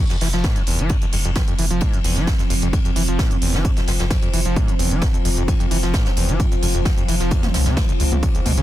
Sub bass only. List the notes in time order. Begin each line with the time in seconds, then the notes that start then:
0.21 F1
0.33 F1
0.67 F1
0.79 F1
1.13 F1
1.25 F1
1.59 F1
1.71 F1
2.04 F1
2.16 F1
2.50 F1
2.62 F1
2.96 F1
3.08 F1
3.42 F1
3.54 F1
3.88 F1
4.00 F1
4.33 F1
4.45 F1
4.79 F1
4.91 F1
5.25 F1
5.37 F1
5.71 F1
5.83 F1
6.17 F1
6.29 F1
6.63 F1
6.75 F1
7.08 F1
7.20 F1
7.54 C#2
7.66 C#2
8.00 C#2
8.12 C#2
8.46 C#2
8.58 C#2